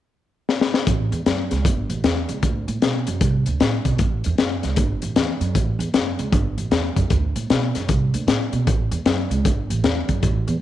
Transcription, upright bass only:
0.87 A1
1.12 E2
1.26 F#2
1.51 C#2
1.65 G1
1.89 A1
2.04 E2
2.29 C#2
2.43 D2
2.68 A2
2.83 B2
3.08 F#2
3.21 C2
3.47 D2
3.61 A2
3.85 B2
3.99 A1
4.26 E2
4.39 F#2
4.64 C#2
4.77 G1
5.03 A1
5.16 E2
5.40 F#2
5.55 A1
5.79 E2
5.94 F#2
6.19 C#2
6.32 G1
6.58 A1
6.71 E2
6.97 F#2
7.10 D2
7.36 A2
7.50 B2
7.75 F#2
7.89 C2
8.14 D2
8.27 A2
8.53 B2
8.67 A1
8.91 E2
9.05 F#2
9.30 C#2
9.45 G1
9.70 A1
9.84 E2
10.09 F#2
10.23 A1
10.47 E2

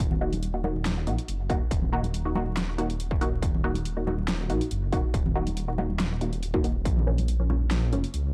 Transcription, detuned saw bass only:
0.00 D#1
0.85 D#1
1.07 A#1
1.28 F#1
1.49 D#1
1.71 D#1
2.04 D#1
2.78 D#1
3.42 D#1
4.28 D#1
4.50 A#1
4.71 F#1
4.92 D#1
5.14 D#1
5.47 D#1
6.21 D#1
6.64 D#1
6.85 A#1
7.71 A#1
7.93 F1
8.14 C#2

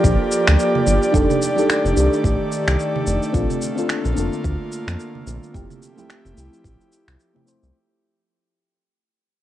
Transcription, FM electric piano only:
Already playing: A#3 D4 F4 A4
1.12 D4 D#4 G4 A4
1.56 D4 D#4 G4 A4
1.94 D4 D#4
1.98 G4 A4
3.33 C4 D4 F4 A4
3.76 C4 D4 F4 A4
4.13 C4 D4
4.18 F4 A4
5.53 A3 C4 E4 G4
5.96 A3 C4 E4 G4
6.34 A3 C4
6.38 E4 G4
7.33 A3 C4 E4 G4
7.45 A3 C4 E4 C5

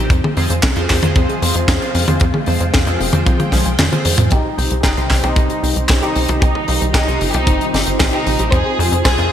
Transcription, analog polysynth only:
0.37 F3 C4 F4 G#4 C5
0.76 F3 C4 F4 G#4 C5
1.03 F3 C4 F4 G#4 C5
1.42 F3 C4 F4 G#4 C5
1.82 F3 C4 F4 G#4 C5
2.08 F3 C4 F4 G#4 C5
2.47 F3 C4 F4 G#4 C5
2.87 F3 C4 F4 G#4 C5
3.13 F3 C4 F4 G#4 C5
3.53 F3 C4 F4 G#4 C5
3.92 F3 C4 F4 G#4 C5
4.58 C3 C4 D#4 G4 C5
4.97 C3 C4 D#4 G4 C5
5.24 C3 C4 D#4 G4 C5
5.63 C3 C4 D#4 G4 C5
6.03 C3 C4 D#4 G4 C5
6.29 C3 C4 D#4 G4 C5
6.68 C3 C4 D#4 G4 C5
7.08 C3 C4 D#4 G4 C5
7.34 C3 C4 D#4 G4 C5
7.74 C3 C4 D#4 G4 C5
8.13 C3 C4 D#4 G4 C5
8.39 F3 C4 D#4 G4 C5
8.79 F3 C4 F4 G#4 C5
9.19 F3 C4 F4 G#4 C5

